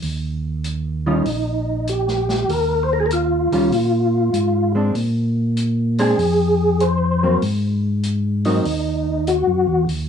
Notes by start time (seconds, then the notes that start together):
0.02 D#2, open hi-hat
0.64 closed hi-hat
1.06 D#3 G3 C#4 D#4 F4
1.25 A#1, open hi-hat
1.87 G4, closed hi-hat
2.08 snare
2.29 snare
2.49 D#2 A#4, open hi-hat
2.83 C5
2.93 A#4
3.00 G#4
3.06 A#4
3.10 F4, closed hi-hat
3.51 C#2 D#3 G3 C#4 F4, open hi-hat
3.72 A#2, open hi-hat
4.33 G#2, closed hi-hat
4.75 G#3 C4 D4
4.95 A#2, open hi-hat
5.57 closed hi-hat
5.98 G#3 C4 D4 G#4, open hi-hat
6.17 F2, open hi-hat
6.80 C5, closed hi-hat
7.23 F#3 A#3 C4
7.42 G#2, open hi-hat
8.03 closed hi-hat
8.45 F#3 A#3 C4 D#4, open hi-hat
8.65 D#2, open hi-hat
9.27 F#4, closed hi-hat
9.47 F#2
9.67 E2
9.87 D#2, open hi-hat